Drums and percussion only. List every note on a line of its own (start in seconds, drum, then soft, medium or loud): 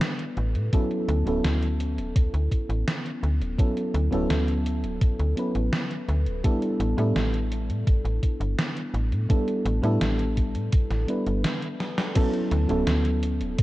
0.01 snare loud
0.01 closed hi-hat medium
0.19 closed hi-hat soft
0.37 closed hi-hat soft
0.55 closed hi-hat soft
0.73 kick loud
0.73 closed hi-hat medium
0.91 closed hi-hat soft
1.09 closed hi-hat medium
1.27 closed hi-hat soft
1.44 snare loud
1.44 closed hi-hat medium
1.62 closed hi-hat soft
1.80 closed hi-hat medium
1.98 closed hi-hat soft
2.16 kick loud
2.16 closed hi-hat medium
2.34 closed hi-hat soft
2.51 kick medium
2.51 closed hi-hat medium
2.70 closed hi-hat soft
2.88 snare loud
2.88 closed hi-hat medium
3.06 closed hi-hat soft
3.23 closed hi-hat soft
3.42 closed hi-hat soft
3.59 kick loud
3.59 closed hi-hat medium
3.77 closed hi-hat soft
3.94 closed hi-hat medium
4.13 closed hi-hat soft
4.30 snare loud
4.30 closed hi-hat medium
4.48 closed hi-hat soft
4.66 closed hi-hat medium
4.84 closed hi-hat soft
5.01 kick loud
5.01 closed hi-hat medium
5.20 closed hi-hat soft
5.37 closed hi-hat medium
5.55 closed hi-hat soft
5.73 snare loud
5.73 closed hi-hat medium
5.91 closed hi-hat soft
6.09 closed hi-hat soft
6.26 closed hi-hat soft
6.44 kick loud
6.44 closed hi-hat medium
6.62 closed hi-hat soft
6.80 closed hi-hat medium
6.98 closed hi-hat soft
7.16 snare loud
7.16 closed hi-hat medium
7.34 closed hi-hat soft
7.52 closed hi-hat medium
7.70 closed hi-hat soft
7.87 kick loud
7.87 closed hi-hat medium
8.05 closed hi-hat soft
8.23 kick medium
8.23 closed hi-hat medium
8.41 closed hi-hat soft
8.59 snare loud
8.59 closed hi-hat medium
8.77 closed hi-hat soft
8.94 closed hi-hat soft
9.12 closed hi-hat soft
9.30 kick loud
9.30 closed hi-hat medium
9.48 closed hi-hat soft
9.66 closed hi-hat medium
9.83 closed hi-hat soft
10.01 snare loud
10.01 closed hi-hat medium
10.19 closed hi-hat soft
10.37 kick medium
10.37 closed hi-hat medium
10.55 closed hi-hat soft
10.72 kick loud
10.72 closed hi-hat medium
10.91 snare soft
10.91 closed hi-hat soft
11.08 closed hi-hat medium
11.27 closed hi-hat soft
11.44 snare loud
11.44 closed hi-hat medium
11.62 closed hi-hat soft
11.80 snare medium
11.80 closed hi-hat soft
11.98 snare loud
11.98 closed hi-hat soft
12.15 kick loud
12.15 closed hi-hat medium
12.15 crash medium
12.34 closed hi-hat soft
12.51 closed hi-hat medium
12.69 closed hi-hat soft
12.87 snare loud
12.87 closed hi-hat medium
13.05 closed hi-hat soft
13.23 closed hi-hat medium
13.41 closed hi-hat soft
13.59 kick loud
13.59 closed hi-hat medium